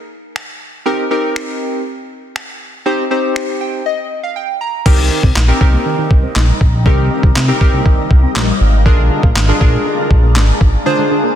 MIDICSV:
0, 0, Header, 1, 6, 480
1, 0, Start_track
1, 0, Key_signature, -3, "minor"
1, 0, Tempo, 500000
1, 825, Time_signature, 4, 2, 24, 8
1, 10899, End_track
2, 0, Start_track
2, 0, Title_t, "Synth keys"
2, 0, Program_c, 0, 88
2, 822, Note_on_c, 0, 60, 80
2, 823, Note_on_c, 0, 63, 75
2, 825, Note_on_c, 0, 67, 76
2, 826, Note_on_c, 0, 70, 92
2, 993, Note_off_c, 0, 60, 0
2, 994, Note_off_c, 0, 63, 0
2, 994, Note_off_c, 0, 67, 0
2, 995, Note_off_c, 0, 70, 0
2, 1062, Note_on_c, 0, 60, 80
2, 1064, Note_on_c, 0, 63, 72
2, 1065, Note_on_c, 0, 67, 73
2, 1067, Note_on_c, 0, 70, 88
2, 1742, Note_off_c, 0, 60, 0
2, 1743, Note_off_c, 0, 63, 0
2, 1743, Note_off_c, 0, 67, 0
2, 1744, Note_off_c, 0, 70, 0
2, 2742, Note_on_c, 0, 60, 87
2, 2744, Note_on_c, 0, 63, 77
2, 2745, Note_on_c, 0, 67, 78
2, 2747, Note_on_c, 0, 72, 91
2, 2913, Note_off_c, 0, 60, 0
2, 2914, Note_off_c, 0, 63, 0
2, 2914, Note_off_c, 0, 67, 0
2, 2915, Note_off_c, 0, 72, 0
2, 2982, Note_on_c, 0, 60, 80
2, 2984, Note_on_c, 0, 63, 70
2, 2985, Note_on_c, 0, 67, 72
2, 2987, Note_on_c, 0, 72, 86
2, 3464, Note_on_c, 0, 79, 69
2, 3662, Note_off_c, 0, 60, 0
2, 3663, Note_off_c, 0, 63, 0
2, 3664, Note_off_c, 0, 67, 0
2, 3664, Note_off_c, 0, 72, 0
2, 3687, Note_off_c, 0, 79, 0
2, 3704, Note_on_c, 0, 75, 75
2, 4039, Note_off_c, 0, 75, 0
2, 4065, Note_on_c, 0, 77, 67
2, 4176, Note_off_c, 0, 77, 0
2, 4185, Note_on_c, 0, 79, 70
2, 4408, Note_off_c, 0, 79, 0
2, 4424, Note_on_c, 0, 82, 68
2, 4647, Note_off_c, 0, 82, 0
2, 4662, Note_on_c, 0, 60, 86
2, 4664, Note_on_c, 0, 63, 75
2, 4665, Note_on_c, 0, 67, 78
2, 4666, Note_on_c, 0, 70, 94
2, 5087, Note_off_c, 0, 60, 0
2, 5088, Note_off_c, 0, 63, 0
2, 5089, Note_off_c, 0, 67, 0
2, 5090, Note_off_c, 0, 70, 0
2, 5262, Note_on_c, 0, 60, 85
2, 5263, Note_on_c, 0, 63, 77
2, 5265, Note_on_c, 0, 67, 74
2, 5267, Note_on_c, 0, 70, 92
2, 5348, Note_off_c, 0, 60, 0
2, 5349, Note_off_c, 0, 63, 0
2, 5350, Note_off_c, 0, 67, 0
2, 5350, Note_off_c, 0, 70, 0
2, 5382, Note_on_c, 0, 60, 82
2, 5383, Note_on_c, 0, 63, 79
2, 5385, Note_on_c, 0, 67, 76
2, 5386, Note_on_c, 0, 70, 96
2, 6062, Note_off_c, 0, 60, 0
2, 6063, Note_off_c, 0, 63, 0
2, 6063, Note_off_c, 0, 67, 0
2, 6064, Note_off_c, 0, 70, 0
2, 6582, Note_on_c, 0, 60, 84
2, 6583, Note_on_c, 0, 63, 78
2, 6585, Note_on_c, 0, 67, 77
2, 6586, Note_on_c, 0, 70, 92
2, 7007, Note_off_c, 0, 60, 0
2, 7008, Note_off_c, 0, 63, 0
2, 7009, Note_off_c, 0, 67, 0
2, 7010, Note_off_c, 0, 70, 0
2, 7181, Note_on_c, 0, 60, 88
2, 7183, Note_on_c, 0, 63, 77
2, 7185, Note_on_c, 0, 67, 77
2, 7186, Note_on_c, 0, 70, 94
2, 7268, Note_off_c, 0, 60, 0
2, 7268, Note_off_c, 0, 63, 0
2, 7269, Note_off_c, 0, 67, 0
2, 7270, Note_off_c, 0, 70, 0
2, 7301, Note_on_c, 0, 60, 88
2, 7303, Note_on_c, 0, 63, 80
2, 7305, Note_on_c, 0, 67, 81
2, 7306, Note_on_c, 0, 70, 95
2, 7982, Note_off_c, 0, 60, 0
2, 7983, Note_off_c, 0, 63, 0
2, 7983, Note_off_c, 0, 67, 0
2, 7984, Note_off_c, 0, 70, 0
2, 8501, Note_on_c, 0, 62, 88
2, 8503, Note_on_c, 0, 65, 80
2, 8504, Note_on_c, 0, 68, 78
2, 8506, Note_on_c, 0, 70, 96
2, 8927, Note_off_c, 0, 62, 0
2, 8928, Note_off_c, 0, 65, 0
2, 8929, Note_off_c, 0, 68, 0
2, 8929, Note_off_c, 0, 70, 0
2, 9101, Note_on_c, 0, 62, 85
2, 9103, Note_on_c, 0, 65, 78
2, 9105, Note_on_c, 0, 68, 79
2, 9106, Note_on_c, 0, 70, 93
2, 9188, Note_off_c, 0, 62, 0
2, 9188, Note_off_c, 0, 65, 0
2, 9189, Note_off_c, 0, 68, 0
2, 9190, Note_off_c, 0, 70, 0
2, 9222, Note_on_c, 0, 62, 85
2, 9223, Note_on_c, 0, 65, 77
2, 9225, Note_on_c, 0, 68, 80
2, 9227, Note_on_c, 0, 70, 95
2, 9902, Note_off_c, 0, 62, 0
2, 9903, Note_off_c, 0, 65, 0
2, 9903, Note_off_c, 0, 68, 0
2, 9905, Note_off_c, 0, 70, 0
2, 10423, Note_on_c, 0, 62, 87
2, 10424, Note_on_c, 0, 65, 78
2, 10426, Note_on_c, 0, 68, 78
2, 10427, Note_on_c, 0, 72, 101
2, 10848, Note_off_c, 0, 62, 0
2, 10848, Note_off_c, 0, 65, 0
2, 10849, Note_off_c, 0, 68, 0
2, 10850, Note_off_c, 0, 72, 0
2, 10899, End_track
3, 0, Start_track
3, 0, Title_t, "Synth arpeggio sound"
3, 0, Program_c, 1, 84
3, 4664, Note_on_c, 1, 51, 84
3, 4752, Note_off_c, 1, 51, 0
3, 4784, Note_on_c, 1, 51, 73
3, 4872, Note_off_c, 1, 51, 0
3, 4904, Note_on_c, 1, 51, 79
3, 4992, Note_off_c, 1, 51, 0
3, 5024, Note_on_c, 1, 60, 77
3, 5112, Note_off_c, 1, 60, 0
3, 5143, Note_on_c, 1, 63, 91
3, 5231, Note_off_c, 1, 63, 0
3, 5263, Note_on_c, 1, 63, 74
3, 5351, Note_off_c, 1, 63, 0
3, 5384, Note_on_c, 1, 60, 76
3, 5472, Note_off_c, 1, 60, 0
3, 5504, Note_on_c, 1, 58, 76
3, 5592, Note_off_c, 1, 58, 0
3, 5623, Note_on_c, 1, 51, 86
3, 5711, Note_off_c, 1, 51, 0
3, 5743, Note_on_c, 1, 51, 71
3, 5831, Note_off_c, 1, 51, 0
3, 5984, Note_on_c, 1, 60, 71
3, 6072, Note_off_c, 1, 60, 0
3, 6103, Note_on_c, 1, 63, 89
3, 6191, Note_off_c, 1, 63, 0
3, 6584, Note_on_c, 1, 51, 93
3, 6672, Note_off_c, 1, 51, 0
3, 6704, Note_on_c, 1, 51, 74
3, 6792, Note_off_c, 1, 51, 0
3, 6824, Note_on_c, 1, 51, 77
3, 6912, Note_off_c, 1, 51, 0
3, 6944, Note_on_c, 1, 60, 75
3, 7032, Note_off_c, 1, 60, 0
3, 7064, Note_on_c, 1, 63, 88
3, 7152, Note_off_c, 1, 63, 0
3, 7185, Note_on_c, 1, 63, 77
3, 7272, Note_off_c, 1, 63, 0
3, 7305, Note_on_c, 1, 60, 79
3, 7392, Note_off_c, 1, 60, 0
3, 7425, Note_on_c, 1, 58, 75
3, 7512, Note_off_c, 1, 58, 0
3, 7544, Note_on_c, 1, 51, 84
3, 7632, Note_off_c, 1, 51, 0
3, 7664, Note_on_c, 1, 51, 71
3, 7752, Note_off_c, 1, 51, 0
3, 7904, Note_on_c, 1, 60, 77
3, 7992, Note_off_c, 1, 60, 0
3, 8024, Note_on_c, 1, 63, 87
3, 8112, Note_off_c, 1, 63, 0
3, 8505, Note_on_c, 1, 50, 85
3, 8592, Note_off_c, 1, 50, 0
3, 8625, Note_on_c, 1, 50, 72
3, 8712, Note_off_c, 1, 50, 0
3, 8744, Note_on_c, 1, 50, 78
3, 8832, Note_off_c, 1, 50, 0
3, 8864, Note_on_c, 1, 58, 77
3, 8952, Note_off_c, 1, 58, 0
3, 8984, Note_on_c, 1, 62, 87
3, 9072, Note_off_c, 1, 62, 0
3, 9104, Note_on_c, 1, 62, 76
3, 9192, Note_off_c, 1, 62, 0
3, 9224, Note_on_c, 1, 58, 77
3, 9312, Note_off_c, 1, 58, 0
3, 9344, Note_on_c, 1, 56, 79
3, 9432, Note_off_c, 1, 56, 0
3, 9464, Note_on_c, 1, 50, 87
3, 9552, Note_off_c, 1, 50, 0
3, 9584, Note_on_c, 1, 50, 70
3, 9672, Note_off_c, 1, 50, 0
3, 9824, Note_on_c, 1, 58, 71
3, 9912, Note_off_c, 1, 58, 0
3, 9944, Note_on_c, 1, 62, 85
3, 10032, Note_off_c, 1, 62, 0
3, 10424, Note_on_c, 1, 50, 93
3, 10512, Note_off_c, 1, 50, 0
3, 10544, Note_on_c, 1, 50, 74
3, 10632, Note_off_c, 1, 50, 0
3, 10664, Note_on_c, 1, 50, 80
3, 10752, Note_off_c, 1, 50, 0
3, 10785, Note_on_c, 1, 58, 80
3, 10872, Note_off_c, 1, 58, 0
3, 10899, End_track
4, 0, Start_track
4, 0, Title_t, "Ambient pad"
4, 0, Program_c, 2, 92
4, 4664, Note_on_c, 2, 48, 78
4, 4664, Note_on_c, 2, 55, 77
4, 4664, Note_on_c, 2, 58, 74
4, 4664, Note_on_c, 2, 63, 88
4, 8466, Note_off_c, 2, 48, 0
4, 8466, Note_off_c, 2, 55, 0
4, 8466, Note_off_c, 2, 63, 0
4, 8504, Note_on_c, 2, 62, 92
4, 8505, Note_on_c, 2, 56, 80
4, 10899, Note_off_c, 2, 56, 0
4, 10899, Note_off_c, 2, 58, 0
4, 10899, Note_off_c, 2, 62, 0
4, 10899, End_track
5, 0, Start_track
5, 0, Title_t, "Analog synth bass"
5, 0, Program_c, 3, 38
5, 4664, Note_on_c, 3, 36, 104
5, 4892, Note_off_c, 3, 36, 0
5, 5024, Note_on_c, 3, 36, 96
5, 5100, Note_off_c, 3, 36, 0
5, 5144, Note_on_c, 3, 34, 94
5, 5296, Note_off_c, 3, 34, 0
5, 5386, Note_on_c, 3, 36, 89
5, 5537, Note_off_c, 3, 36, 0
5, 5862, Note_on_c, 3, 36, 94
5, 6015, Note_off_c, 3, 36, 0
5, 6104, Note_on_c, 3, 34, 89
5, 6256, Note_off_c, 3, 34, 0
5, 6345, Note_on_c, 3, 34, 91
5, 6584, Note_on_c, 3, 36, 106
5, 6598, Note_off_c, 3, 34, 0
5, 6812, Note_off_c, 3, 36, 0
5, 6944, Note_on_c, 3, 36, 91
5, 7020, Note_off_c, 3, 36, 0
5, 7064, Note_on_c, 3, 48, 97
5, 7216, Note_off_c, 3, 48, 0
5, 7424, Note_on_c, 3, 36, 90
5, 7500, Note_off_c, 3, 36, 0
5, 7782, Note_on_c, 3, 36, 95
5, 7935, Note_off_c, 3, 36, 0
5, 8024, Note_on_c, 3, 34, 103
5, 8176, Note_off_c, 3, 34, 0
5, 8264, Note_on_c, 3, 32, 90
5, 8504, Note_on_c, 3, 34, 111
5, 8518, Note_off_c, 3, 32, 0
5, 8732, Note_off_c, 3, 34, 0
5, 8864, Note_on_c, 3, 34, 97
5, 8940, Note_off_c, 3, 34, 0
5, 8984, Note_on_c, 3, 32, 90
5, 9136, Note_off_c, 3, 32, 0
5, 9226, Note_on_c, 3, 34, 96
5, 9377, Note_off_c, 3, 34, 0
5, 9702, Note_on_c, 3, 34, 94
5, 9944, Note_on_c, 3, 32, 96
5, 9958, Note_off_c, 3, 34, 0
5, 10096, Note_off_c, 3, 32, 0
5, 10185, Note_on_c, 3, 32, 91
5, 10337, Note_off_c, 3, 32, 0
5, 10899, End_track
6, 0, Start_track
6, 0, Title_t, "Drums"
6, 345, Note_on_c, 9, 26, 106
6, 441, Note_off_c, 9, 26, 0
6, 1307, Note_on_c, 9, 26, 115
6, 1403, Note_off_c, 9, 26, 0
6, 2264, Note_on_c, 9, 26, 106
6, 2360, Note_off_c, 9, 26, 0
6, 3227, Note_on_c, 9, 26, 115
6, 3323, Note_off_c, 9, 26, 0
6, 4664, Note_on_c, 9, 36, 108
6, 4664, Note_on_c, 9, 49, 86
6, 4760, Note_off_c, 9, 36, 0
6, 4760, Note_off_c, 9, 49, 0
6, 5024, Note_on_c, 9, 36, 86
6, 5120, Note_off_c, 9, 36, 0
6, 5146, Note_on_c, 9, 39, 117
6, 5152, Note_on_c, 9, 38, 96
6, 5242, Note_off_c, 9, 39, 0
6, 5248, Note_off_c, 9, 38, 0
6, 5386, Note_on_c, 9, 36, 92
6, 5482, Note_off_c, 9, 36, 0
6, 5862, Note_on_c, 9, 36, 89
6, 5958, Note_off_c, 9, 36, 0
6, 6104, Note_on_c, 9, 39, 109
6, 6110, Note_on_c, 9, 38, 85
6, 6200, Note_off_c, 9, 39, 0
6, 6206, Note_off_c, 9, 38, 0
6, 6345, Note_on_c, 9, 36, 89
6, 6441, Note_off_c, 9, 36, 0
6, 6584, Note_on_c, 9, 36, 111
6, 6680, Note_off_c, 9, 36, 0
6, 6944, Note_on_c, 9, 36, 88
6, 7040, Note_off_c, 9, 36, 0
6, 7066, Note_on_c, 9, 39, 119
6, 7072, Note_on_c, 9, 38, 94
6, 7162, Note_off_c, 9, 39, 0
6, 7168, Note_off_c, 9, 38, 0
6, 7306, Note_on_c, 9, 36, 98
6, 7402, Note_off_c, 9, 36, 0
6, 7542, Note_on_c, 9, 36, 91
6, 7638, Note_off_c, 9, 36, 0
6, 7782, Note_on_c, 9, 36, 89
6, 7878, Note_off_c, 9, 36, 0
6, 8024, Note_on_c, 9, 39, 107
6, 8030, Note_on_c, 9, 38, 83
6, 8120, Note_off_c, 9, 39, 0
6, 8126, Note_off_c, 9, 38, 0
6, 8504, Note_on_c, 9, 36, 104
6, 8600, Note_off_c, 9, 36, 0
6, 8864, Note_on_c, 9, 36, 90
6, 8960, Note_off_c, 9, 36, 0
6, 8987, Note_on_c, 9, 39, 112
6, 8993, Note_on_c, 9, 38, 100
6, 9083, Note_off_c, 9, 39, 0
6, 9089, Note_off_c, 9, 38, 0
6, 9226, Note_on_c, 9, 36, 97
6, 9322, Note_off_c, 9, 36, 0
6, 9702, Note_on_c, 9, 36, 90
6, 9798, Note_off_c, 9, 36, 0
6, 9944, Note_on_c, 9, 39, 111
6, 9950, Note_on_c, 9, 38, 90
6, 10040, Note_off_c, 9, 39, 0
6, 10046, Note_off_c, 9, 38, 0
6, 10185, Note_on_c, 9, 36, 91
6, 10281, Note_off_c, 9, 36, 0
6, 10899, End_track
0, 0, End_of_file